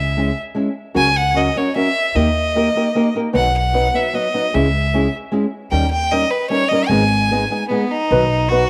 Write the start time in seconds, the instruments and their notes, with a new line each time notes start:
Already playing: upright bass C#2, violin E5
0.17 nylon-string guitar G#3 C#4 E4 G#4
0.55 nylon-string guitar G#3 C#4 E4 G#4
0.94 upright bass C#2, nylon-string guitar C#3 F#3 C#4 F#4 A#4, violin G#5
1.16 violin F#5
1.34 nylon-string guitar F#3 C#4 F#4 A#4, violin D#5
1.56 nylon-string guitar F#3 C#4 F#4 A#4, violin C#5
1.75 nylon-string guitar F#3 C#4 F#4 A#4, violin E5
2.15 upright bass D#2, nylon-string guitar D#3 A#3 D#4 G4 A#4, violin D#5
2.55 nylon-string guitar A#3 D#4 G4 A#4
2.75 nylon-string guitar A#3 D#4 G4 A#4
2.95 nylon-string guitar A#3 D#4 G4 A#4
3.15 nylon-string guitar A#3 D#4 G4 A#4
3.33 upright bass B1, nylon-string guitar B2 D#3 F#3 B3 D#4 B4, violin F#5
3.58 violin F#5
3.73 nylon-string guitar F#3 B3 D#4 B4
3.94 nylon-string guitar F#3 B3 D#4 B4, violin E5
4.13 nylon-string guitar F#3 B3 D#4 B4, violin D#5
4.34 nylon-string guitar F#3 B3 D#4 B4
4.53 upright bass C#2, nylon-string guitar C#3 G#3 C#4 E4 G#4, violin E5
4.94 nylon-string guitar G#3 C#4 E4 G#4
5.32 nylon-string guitar G#3 C#4 E4 G#4
5.71 upright bass D#2, nylon-string guitar D#3 G3 C#4 D#4 A#4, violin G5
5.91 violin G5
6.11 nylon-string guitar G3 C#4 D#4 A#4, violin D#5
6.31 violin B4
6.50 nylon-string guitar G3 C#4 D#4 A#4, violin C#5
6.68 nylon-string guitar G3 C#4, violin D#5
6.73 nylon-string guitar D#4 A#4
6.88 upright bass G#1, nylon-string guitar G#2 D#3 G#3 B3 D#4 G#4, violin G#5
7.31 nylon-string guitar G#3 B3 D#4 G#4
7.50 nylon-string guitar G#3 B3 D#4 G#4
7.69 nylon-string guitar G#3 B3 D#4 G#4, violin B3
7.91 violin D#4
8.11 upright bass B1, nylon-string guitar B2 D#3 F#3 B3 D#4 B4
8.49 nylon-string guitar F#3 B3 D#4 B4, violin F#4